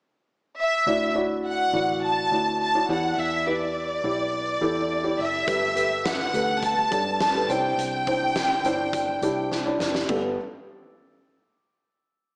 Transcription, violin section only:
0.59 1.12 E5 medium
1.47 1.99 F#5 medium
2.04 2.57 A5 medium
2.62 2.88 A5 medium
2.91 3.17 F#5 medium
3.19 3.47 E5 medium
3.49 5.20 D5 medium
5.21 6.06 E5 medium
6.06 6.63 F#5 medium
6.63 7.20 A5 medium
7.21 7.48 A5 medium
7.50 9.52 G5 medium

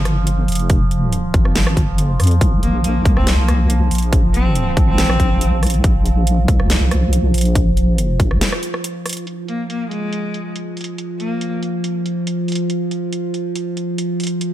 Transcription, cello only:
2.63 2.82 A#3 medium
2.84 3.03 A#3 medium
3.17 3.36 C4 medium
3.38 3.70 A#3 medium
4.34 4.67 C4 medium
4.88 5.48 C4 medium
9.48 9.68 A#3 medium
9.70 9.89 A#3 medium
9.91 10.51 G#3 medium
11.20 11.52 A#3 medium

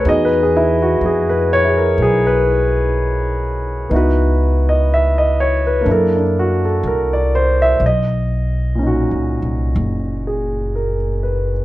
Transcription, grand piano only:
0.05 3.88 B3 soft
0.05 3.90 D#4 soft
0.05 0.81 F#4 soft
0.05 0.41 G#4 medium
0.05 0.28 D#5 medium
0.25 0.36 B4 medium
0.43 0.73 G#4 medium
0.57 0.78 E4 medium
0.82 0.99 F#4 medium
1.06 1.36 G#4 medium
1.30 1.64 B4 medium
1.53 1.75 C#5 medium
1.65 3.91 E4 soft
1.65 2.01 G#4 soft
1.78 1.95 A#4 medium
2.02 2.32 G#4 medium
2.27 2.48 B4 medium
3.89 5.85 B3 soft
3.89 5.86 D#4 soft
3.89 5.87 E4 soft
3.94 5.87 F#4 medium
3.94 4.72 B4 medium
4.69 4.86 D#5 medium
4.94 5.24 E5 medium
5.18 5.52 D#5 medium
5.40 5.62 C#5 medium
5.67 5.83 B4 medium
5.81 7.79 A#3 soft
5.81 6.15 D4 soft
5.88 7.83 E4 soft
5.88 6.64 A4 medium
5.88 6.21 A#4 medium
6.17 6.50 D4 soft
6.39 6.61 F#4 medium
6.65 6.81 A4 medium
6.87 7.18 A#4 medium
7.13 7.48 D5 medium
7.35 7.58 C5 medium
7.62 7.79 E5 medium
7.86 8.78 D#5 medium
8.75 11.65 A#2 soft
8.75 11.65 C#4 soft
8.83 11.65 D#4 soft
8.83 11.65 F#4 soft
10.27 10.95 G#4 soft
10.76 11.52 A#4 soft
11.23 11.65 B4 soft

